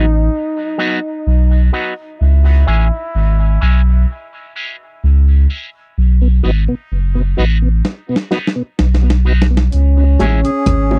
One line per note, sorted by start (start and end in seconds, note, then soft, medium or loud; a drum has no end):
0.00 0.29 A1 medium
0.00 1.69 D#4 medium
0.78 0.98 F#3 medium
0.78 0.98 B3 medium
0.78 0.99 D#4 medium
0.78 0.99 F#4 medium
1.27 1.70 B1 loud
1.72 1.92 F#3 medium
1.72 1.93 B3 medium
1.72 1.93 D#4 medium
1.72 1.93 F#4 medium
2.20 2.64 C#2 loud
2.20 5.45 E4 medium
2.67 2.90 A1 medium
2.67 2.87 G#3 medium
2.67 2.87 C#4 medium
2.67 2.87 E4 medium
2.67 2.87 G#4 medium
3.15 3.58 G#1 medium
3.60 4.05 B1 medium
3.60 3.80 G#3 medium
3.60 3.81 C#4 medium
3.60 3.81 E4 medium
3.60 3.81 G#4 medium
4.55 4.75 G#3 medium
4.55 4.75 C#4 medium
4.55 4.75 E4 medium
4.55 4.75 G#4 medium
5.04 5.47 C#2 loud
5.49 5.69 G#3 medium
5.49 5.69 C#4 medium
5.49 5.69 E4 medium
5.49 5.69 G#4 medium
5.97 6.41 B1 loud
5.97 9.21 D#4 loud
6.21 6.28 B2 medium
6.43 6.67 G#1 medium
6.43 6.63 F#3 medium
6.43 6.51 F#3 medium
6.43 6.63 B3 medium
6.43 6.51 B3 medium
6.43 6.63 D#4 medium
6.43 6.51 D#4 medium
6.43 6.63 F#4 medium
6.68 6.75 B2 medium
6.92 7.35 F#1 medium
7.15 7.22 B2 medium
7.37 7.82 A1 medium
7.37 7.57 F#3 medium
7.37 7.45 F#3 medium
7.37 7.57 B3 medium
7.37 7.45 B3 medium
7.37 7.45 D#4 medium
7.37 7.57 D#4 medium
7.37 7.58 F#4 medium
7.62 7.69 B2 medium
7.85 snare medium
8.09 8.16 B2 medium
8.16 snare medium
8.31 8.38 F#3 medium
8.31 8.51 F#3 medium
8.31 8.51 B3 medium
8.31 8.39 B3 medium
8.31 8.39 D#4 medium
8.31 8.51 D#4 loud
8.31 8.52 F#4 loud
8.31 snare medium
8.47 snare medium
8.56 8.63 B2 medium
8.79 9.69 B1 loud
8.79 snare medium
8.94 snare medium
9.03 9.10 B2 soft
9.10 snare medium
9.25 9.33 F#3 medium
9.25 9.45 F#3 medium
9.25 9.45 B3 medium
9.25 9.33 B3 medium
9.25 9.33 D#4 medium
9.25 9.45 D#4 medium
9.25 9.46 F#4 medium
9.42 snare medium
9.51 9.57 B2 medium
9.57 snare medium
9.72 10.17 C#2 loud
9.72 10.99 C#4 medium
9.72 closed hi-hat medium
9.98 10.04 C#3 medium
10.19 10.43 A1 loud
10.19 10.27 G#3 medium
10.19 10.39 G#3 medium
10.19 10.27 C#4 medium
10.19 10.40 C#4 medium
10.19 10.27 E4 medium
10.19 10.40 E4 medium
10.19 10.40 G#4 medium
10.19 closed hi-hat medium
10.19 high bongo medium
10.44 10.51 C#3 medium
10.44 10.99 G#4 loud
10.44 closed hi-hat medium
10.66 10.99 G#1 medium
10.66 kick loud
10.66 cross-stick loud
10.66 closed hi-hat loud
10.91 10.98 C#3 medium
10.91 high bongo medium